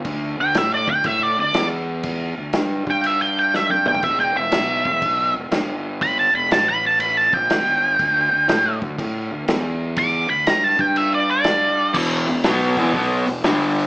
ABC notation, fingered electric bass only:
X:1
M:4/4
L:1/8
Q:"Swing" 1/4=121
K:Em
V:1 name="Fingered electric bass" clef=bass
D,, D,, A,, D,, A,, D,, E,,2- | E,, D,, G,, G,,4- G,, | E,,, E,,, B,,, E,,, B,,, E,,, G,,,2- | G,,, E,,, A,,,3 _B,,, G,,,2 |
D,, D,, A,, D,, A,, D,, E,,2- | E,, D,, G,, G,,4- G,, | E,,, E,,, B,,, E,,, B,,, E,,, G,,,2 |]